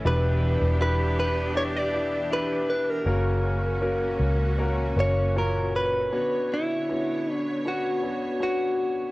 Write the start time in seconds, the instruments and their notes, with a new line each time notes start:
Already playing: string section E3
0.05 fingered electric bass E1, grand piano B2 D4 E4 G4 B4, string section B3 D4 G4, clean electric guitar B4
0.61 fingered electric bass E1
0.80 grand piano D4 E4 G4 B4, clean electric guitar B4
1.20 clean electric guitar B4
1.55 grand piano D4 E4 G4 D5, clean electric guitar C#5
1.77 clean electric guitar D5
1.94 grand piano D4 E4 G4 D5
2.31 grand piano D4 E4 G4 D5, clean electric guitar B4
2.70 clean electric guitar B4
2.90 clean electric guitar A#4
3.06 fingered electric bass F#1, string section A#2 C#4 F#4, grand piano C#3 A#3 C#4 F#4 A#4
3.81 grand piano A#3 C#4 F#4 A#4
4.20 fingered electric bass C#2
4.58 grand piano A#3 C#4 F#4 A#4
4.96 fingered electric bass F#1, grand piano A#3 C#4 F#4 A#4, clean electric guitar C#5
5.36 grand piano A#2 C#4 F#4 C#5, clean electric guitar A#4
5.76 clean electric guitar B4
6.12 string section D3 B3 C#5, grand piano B3 C#4 D4 F#4
6.54 clean electric guitar E4
6.89 grand piano B3 C#4 D4 F#4
7.34 clean electric guitar D4
7.65 grand piano B3 C#4 D4 F#4, clean electric guitar F#4
8.03 grand piano B3 C#4 D4 F#4
8.40 grand piano B3 C#4 D4 F#4, clean electric guitar F#4